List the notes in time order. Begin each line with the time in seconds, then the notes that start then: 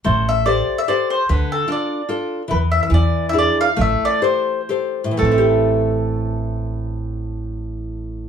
0.04 A1 A3 C5
0.29 E5
0.46 G4 A4 C5 D5
0.78 E5
0.88 G4 A4 C5 D5
1.10 C5
1.29 D2 D3 B4
1.52 A4
1.68 D4 F4 A4
1.72 D5
2.09 D4 F4 A4
2.48 E2 E3 B4
2.71 E5
2.83 E5
2.90 E2 E3
2.94 D5
3.29 D4 E4 E5
3.34 G#4
3.39 D5
3.61 F5
3.77 A1 A3
3.81 E5
4.05 D5
4.22 G4 A4 C5
4.69 G4 A4 C5
5.04 A2
5.11 E3
5.17 A3 A4
5.22 A1 C4
5.32 E4
5.38 G4